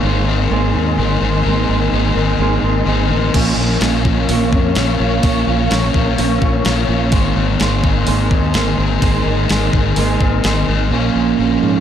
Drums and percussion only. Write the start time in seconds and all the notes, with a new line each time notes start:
3.34 kick, crash
3.81 snare, open hi-hat
4.05 kick
4.29 open hi-hat
4.53 kick
4.75 snare, open hi-hat
5.23 kick, open hi-hat
5.71 snare, open hi-hat
5.94 kick
6.18 open hi-hat
6.42 kick
6.65 snare, open hi-hat
7.12 kick, open hi-hat
7.60 snare, open hi-hat
7.84 kick
8.07 open hi-hat
8.31 kick
8.54 snare, open hi-hat
9.02 kick, open hi-hat
9.49 snare, open hi-hat
9.73 kick
9.96 open hi-hat
10.21 kick
10.44 snare, open hi-hat